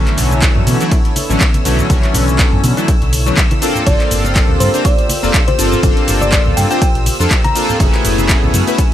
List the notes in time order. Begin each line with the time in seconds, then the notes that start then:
Already playing: D3 E3 F#3 A3 B3 C#4 E4 A4 C#5 E6
0.07 clap, closed hi-hat
0.17 B1, open hi-hat, ride, high bongo, low conga, shaker
0.31 closed hi-hat, high bongo, high conga, shaker
0.42 kick, clap, closed hi-hat, ride, shaker
0.55 F#2, low conga
0.67 B2, open hi-hat, ride, high conga, shaker
0.80 D3 E3 F#3 A3 E4, closed hi-hat, shaker
0.91 kick, closed hi-hat, ride, shaker
1.05 closed hi-hat
1.16 open hi-hat, ride, high bongo, high conga, shaker
1.29 A1 D3 E3 F#3 A3 C#4, shaker
1.41 kick, clap, closed hi-hat, ride, shaker
1.54 closed hi-hat, high conga
1.65 B1 D3 E3 F#3 A3 C#4, open hi-hat, ride, shaker
1.79 closed hi-hat, low conga, shaker
1.89 B1 D3 E3 F#3 A3 C#4, kick, closed hi-hat, ride, high conga, shaker
2.03 clap, closed hi-hat
2.14 B1, open hi-hat, ride, high bongo, low conga, shaker
2.28 closed hi-hat, high bongo, high conga, shaker
2.39 kick, clap, closed hi-hat, ride, shaker
2.53 F#2, low conga
2.64 B2, open hi-hat, ride, high conga, shaker
2.77 D3 E3 F#3 A3 E4, closed hi-hat, shaker
2.88 kick, closed hi-hat, ride, shaker
3.02 B1, closed hi-hat
3.13 open hi-hat, ride, high conga, shaker
3.26 D3 E3 F#3 A3 C#4, closed hi-hat, shaker
3.37 kick, clap, closed hi-hat, ride, shaker
3.51 closed hi-hat, high bongo, high conga
3.61 A#3 C4 D4 F4 G4 A4 C5, open hi-hat, ride, shaker
3.75 closed hi-hat, low conga, shaker
3.85 G1 A#3 C4 D4 F4 A4 D5, kick, closed hi-hat, ride, high conga, shaker
4.00 clap, closed hi-hat
4.11 G1, open hi-hat, ride, high bongo, low conga, shaker
4.24 closed hi-hat, high bongo, high conga, shaker
4.36 kick, clap, closed hi-hat, ride, shaker
4.49 D2, low conga
4.60 G2 C5, open hi-hat, ride, high conga, shaker
4.73 A#3 C4 D4 F4 C5, closed hi-hat, shaker
4.85 D5, kick, closed hi-hat, ride, shaker
4.98 closed hi-hat
5.09 open hi-hat, ride, high bongo, high conga, shaker
5.23 F1 A#3 C4 D4 F4 A4, shaker
5.34 kick, clap, closed hi-hat, ride, shaker
5.48 C5, closed hi-hat, high conga
5.58 G1 A#3 C4 D4 F4 A4, open hi-hat, ride, shaker
5.72 closed hi-hat, low conga, shaker
5.83 G1 A4, kick, closed hi-hat, ride, high conga, shaker
5.97 closed hi-hat
6.08 G1, open hi-hat, ride, high bongo, low conga, shaker
6.21 D5, closed hi-hat, high bongo, high conga, shaker
6.32 D5, kick, clap, closed hi-hat, ride, shaker
6.46 D2, low conga
6.57 G2 G5, open hi-hat, ride, high conga, shaker
6.70 A#3 C4 D4 F4 C5 G5, closed hi-hat, shaker
6.82 G5, kick, closed hi-hat, ride, shaker
6.95 A#1, closed hi-hat
7.06 open hi-hat, ride, high conga, shaker
7.19 F2 A#3 C4 D4 F4 A4, shaker
7.31 kick, clap, closed hi-hat, ride, shaker
7.44 A#5, closed hi-hat, high bongo, high conga
7.55 A#3 C4 D4 F4 A4, open hi-hat, ride, shaker
7.69 closed hi-hat, low conga, shaker
7.79 F#1 A3 B3 C#4 E4 F#4 G#4 B4, kick, closed hi-hat, ride, high conga, shaker
7.94 clap, closed hi-hat
8.03 F#1, open hi-hat, ride, high bongo, low conga, shaker
8.18 closed hi-hat, high bongo, high conga, shaker
8.29 kick, clap, closed hi-hat, ride, shaker
8.43 C#2, low conga
8.54 F#2, open hi-hat, ride, high conga, shaker
8.67 A3 B3 C#4 E4 B4, closed hi-hat, shaker
8.78 kick, closed hi-hat, ride, shaker